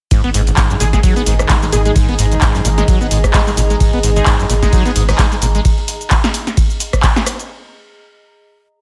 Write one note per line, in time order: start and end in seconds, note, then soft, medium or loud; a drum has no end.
0.11 0.22 G#2 medium
0.11 5.61 G#2 medium
0.11 5.61 D#3 medium
0.11 5.61 D#4 medium
0.11 7.50 G#4 medium
0.11 5.61 G#4 medium
0.11 kick loud
0.11 closed hi-hat medium
0.11 ride medium
0.11 cabasa soft
0.24 0.32 G#1 loud
0.24 0.30 B3 loud
0.24 closed hi-hat soft
0.34 0.52 G#1 medium
0.34 0.41 G#2 medium
0.34 7.50 D#5 medium
0.34 closed hi-hat medium
0.34 open hi-hat loud
0.34 cabasa medium
0.47 0.51 G#1 loud
0.47 closed hi-hat soft
0.47 closed hi-hat medium
0.47 cabasa soft
0.57 0.68 G#2 medium
0.57 kick loud
0.57 snare loud
0.57 clap loud
0.57 closed hi-hat medium
0.57 ride medium
0.57 cabasa soft
0.70 0.76 F#2 loud
0.70 closed hi-hat soft
0.70 cabasa soft
0.80 0.98 G#1 medium
0.80 0.85 A#2 medium
0.80 0.89 G#4 medium
0.80 closed hi-hat medium
0.80 open hi-hat loud
0.80 cabasa medium
0.93 0.99 G#3 medium
0.93 1.00 G#4 medium
0.93 kick medium
0.93 snare soft
0.93 closed hi-hat medium
0.93 cabasa soft
1.03 1.14 F#3 medium
1.03 kick loud
1.03 closed hi-hat medium
1.03 ride medium
1.03 cabasa soft
1.16 1.22 B3 loud
1.16 closed hi-hat soft
1.16 cabasa soft
1.26 1.44 G#1 medium
1.26 1.34 G#2 medium
1.26 closed hi-hat medium
1.26 open hi-hat loud
1.26 cabasa medium
1.39 1.43 G#1 loud
1.39 cross-stick medium
1.39 closed hi-hat medium
1.39 cabasa soft
1.49 1.57 G#3 medium
1.49 kick loud
1.49 snare loud
1.49 clap loud
1.49 closed hi-hat medium
1.49 ride medium
1.49 cabasa soft
1.57 7.50 A#5 medium
1.62 1.66 G#3 medium
1.62 closed hi-hat soft
1.62 cabasa soft
1.73 1.90 G#1 medium
1.73 1.77 A#2 medium
1.73 1.81 G#4 medium
1.73 closed hi-hat medium
1.73 open hi-hat loud
1.73 cabasa medium
1.85 1.91 G#3 medium
1.85 1.92 G#4 medium
1.85 closed hi-hat medium
1.85 cabasa soft
1.96 2.06 G#2 medium
1.96 kick loud
1.96 closed hi-hat soft
1.96 closed hi-hat loud
1.96 ride medium
1.96 cabasa soft
2.09 2.16 G#1 loud
2.09 2.14 B3 loud
2.09 closed hi-hat soft
2.19 2.37 G#1 medium
2.19 2.26 G#2 medium
2.19 closed hi-hat medium
2.19 open hi-hat loud
2.19 cabasa medium
2.32 2.35 G#1 loud
2.32 closed hi-hat medium
2.32 cabasa soft
2.41 2.53 G#2 medium
2.41 kick loud
2.41 snare loud
2.41 clap loud
2.41 closed hi-hat soft
2.41 closed hi-hat medium
2.41 ride medium
2.41 cabasa soft
2.55 2.60 F#2 loud
2.55 snare medium
2.55 closed hi-hat soft
2.55 cabasa soft
2.65 2.83 G#1 medium
2.65 2.69 A#2 medium
2.65 closed hi-hat medium
2.65 open hi-hat loud
2.65 cabasa medium
2.78 2.84 G#3 medium
2.78 snare soft
2.78 closed hi-hat medium
2.78 cabasa soft
2.88 2.99 F#3 medium
2.88 kick loud
2.88 closed hi-hat medium
2.88 ride medium
2.88 cabasa soft
3.01 3.07 B3 loud
3.01 closed hi-hat soft
3.01 cabasa soft
3.11 3.29 G#1 medium
3.11 3.18 G#2 medium
3.11 closed hi-hat medium
3.11 open hi-hat loud
3.11 cabasa medium
3.24 3.27 G#1 loud
3.24 kick medium
3.24 cross-stick medium
3.24 closed hi-hat medium
3.24 closed hi-hat soft
3.24 cabasa soft
3.34 3.41 G#3 medium
3.34 kick loud
3.34 snare loud
3.34 clap loud
3.34 closed hi-hat medium
3.34 open hi-hat medium
3.34 ride medium
3.34 cabasa soft
3.47 3.51 G#3 medium
3.47 closed hi-hat soft
3.47 cabasa soft
3.57 3.75 G#1 medium
3.57 3.62 A#2 medium
3.57 closed hi-hat medium
3.57 open hi-hat loud
3.57 cabasa medium
3.70 3.76 G#3 medium
3.70 closed hi-hat medium
3.70 cabasa soft
3.80 3.91 G#2 medium
3.80 kick loud
3.80 closed hi-hat medium
3.80 ride medium
3.80 cabasa soft
3.93 4.01 G#1 loud
3.93 3.99 B3 loud
3.93 closed hi-hat soft
4.03 4.21 G#1 medium
4.03 4.11 G#2 medium
4.03 closed hi-hat medium
4.03 open hi-hat loud
4.03 cabasa medium
4.16 4.20 G#1 loud
4.16 4.27 G#3 medium
4.16 4.27 D#4 medium
4.16 4.27 G#4 medium
4.16 closed hi-hat soft
4.16 closed hi-hat medium
4.16 cabasa soft
4.26 4.37 G#2 medium
4.26 kick loud
4.26 snare loud
4.26 clap loud
4.26 closed hi-hat medium
4.26 ride medium
4.26 cabasa soft
4.39 4.45 F#2 loud
4.39 closed hi-hat soft
4.39 cabasa soft
4.50 4.67 G#1 medium
4.50 4.54 A#2 medium
4.50 closed hi-hat medium
4.50 open hi-hat loud
4.50 cabasa medium
4.63 5.06 G#3 medium
4.63 4.68 G#3 medium
4.63 5.06 D#4 medium
4.63 5.06 G#4 loud
4.63 kick medium
4.63 snare soft
4.63 closed hi-hat medium
4.63 cabasa soft
4.72 4.83 F#3 medium
4.72 kick loud
4.72 closed hi-hat medium
4.72 closed hi-hat soft
4.72 ride medium
4.72 cabasa soft
4.85 4.91 B3 loud
4.85 closed hi-hat soft
4.85 cabasa soft
4.96 5.14 G#1 medium
4.96 5.03 G#2 medium
4.96 closed hi-hat medium
4.96 open hi-hat loud
4.96 cabasa medium
5.09 5.12 G#1 loud
5.09 5.27 G#3 medium
5.09 5.27 D#4 medium
5.09 5.27 G#4 medium
5.09 cross-stick medium
5.09 closed hi-hat medium
5.09 cabasa soft
5.18 5.26 G#3 medium
5.18 kick loud
5.18 snare loud
5.18 clap loud
5.18 closed hi-hat medium
5.18 ride medium
5.18 cabasa soft
5.32 5.35 G#3 medium
5.32 closed hi-hat soft
5.32 cabasa soft
5.41 5.60 G#1 medium
5.41 5.46 A#2 medium
5.41 closed hi-hat medium
5.41 open hi-hat loud
5.41 cabasa medium
5.55 5.60 G#3 medium
5.55 closed hi-hat medium
5.55 cabasa soft
5.65 kick loud
5.65 closed hi-hat medium
5.65 ride medium
5.65 cabasa soft
5.78 closed hi-hat soft
5.88 open hi-hat loud
5.88 cabasa medium
6.01 closed hi-hat medium
6.01 cabasa soft
6.11 kick loud
6.11 clap loud
6.11 closed hi-hat soft
6.11 ride medium
6.11 cabasa soft
6.24 snare medium
6.24 closed hi-hat soft
6.24 cabasa soft
6.34 open hi-hat loud
6.34 cabasa medium
6.47 snare soft
6.47 closed hi-hat medium
6.47 cabasa soft
6.57 kick loud
6.57 closed hi-hat soft
6.57 ride medium
6.57 cabasa soft
6.70 closed hi-hat soft
6.70 cabasa soft
6.80 open hi-hat loud
6.80 cabasa medium
6.93 kick medium
6.93 cross-stick medium
6.93 closed hi-hat soft
6.93 cabasa soft
7.03 kick loud
7.03 clap loud
7.03 closed hi-hat medium
7.03 ride medium
7.03 cabasa soft
7.16 snare medium
7.16 closed hi-hat soft
7.16 cabasa soft
7.26 cross-stick medium
7.26 open hi-hat loud
7.26 cabasa medium
7.39 closed hi-hat medium
7.39 cabasa soft